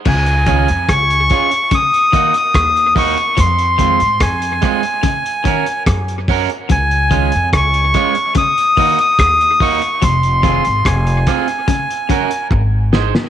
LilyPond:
<<
  \new Staff \with { instrumentName = "Melodica" } { \time 4/4 \key des \major \tempo 4 = 72 aes''4 des'''4 ees'''8. ees'''8. des'''8 | c'''4 aes''2 r4 | aes''4 des'''4 ees'''8. ees'''8. des'''8 | c'''4 aes''2 r4 | }
  \new Staff \with { instrumentName = "Clean electric guitar" } { \time 4/4 \key des \major r8 <des' f' aes'>16 r8. <des' f' aes'>16 r8. <bes ees' ges'>16 r8. <bes ees' ges'>16 r16 | r8 <aes c' f'>16 r8. <aes c' f'>16 r8. <des' ges' bes'>16 r8. <des' ges' bes'>16 r16 | r8 <aes des' f'>16 r8. <aes des' f'>16 r8. <bes ees' ges'>16 r8. <bes ees' ges'>16 r16 | r8 <c' f' aes'>16 r8. <c' f' aes'>16 r8. <des' ges' bes'>16 r8. <ees' aes' c''>16 r16 | }
  \new Staff \with { instrumentName = "Clean electric guitar" } { \clef bass \time 4/4 \key des \major des16 r16 ees16 r4 r16 des16 r16 ees16 r4 r16 | f16 r16 ees16 r4 r16 des16 r16 ees16 r4 r16 | des16 r16 ees16 r4 r16 des16 r16 ees16 r4 r16 | f16 r16 ees16 r4 r16 des16 r16 des16 r4 r16 | }
  \new Staff \with { instrumentName = "Upright bass" } { \clef bass \time 4/4 \key des \major des,8. f,16 des,8 r4. ees,8. r16 | f,8. aes,16 f,8 r4. ges,8. r16 | des,8. f,16 des,8 r4. ees,8. r16 | f,,8. aes,,16 f,,8 r4. aes,,8. r16 | }
  \new DrumStaff \with { instrumentName = "Drums" } \drummode { \time 4/4 <cymc bd>16 hh16 <hh bd>16 hh16 <hh bd ss>16 hh16 <hh bd>16 hh16 <hh bd>16 hh16 <hh bd>16 hh16 <hh bd ss>16 hh16 <hho bd>16 hh16 | <hh bd>16 hh16 <hh bd>16 hh16 <hh bd ss>16 hh16 <hh bd ss>16 hh16 <hh bd>16 hh16 <hh bd>16 hh16 <hh bd ss>16 hh16 <hho bd>16 hh16 | <hh bd>16 hh16 <hh bd>16 hh16 <hh bd ss>16 hh16 <hh bd ss>16 hh16 <hh bd>16 hh16 <hho bd>16 hh16 <hh bd ss>16 hh16 <hho bd>16 hh16 | <hh bd>16 hh16 <hh bd>16 hh16 <hh bd ss>16 hh16 <hh bd ss>16 hh16 <hh bd>16 hh16 <hh bd>16 hh16 bd8 sn16 sn16 | }
>>